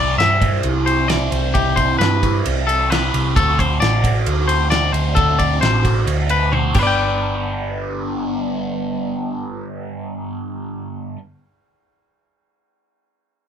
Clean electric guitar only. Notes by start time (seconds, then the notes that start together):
Already playing: D5
0.18 E5
0.86 C5
1.08 D5
1.31 C5
1.54 G4
1.76 C5
1.99 B4
2.67 A4
2.90 B4
3.36 A4
3.59 C5
3.80 D5
4.48 C5
4.70 D5
4.92 C5
5.15 A4
5.39 D5
5.61 C5
6.30 B4
6.52 C5
6.75 G4
6.79 B4 D5
6.87 G5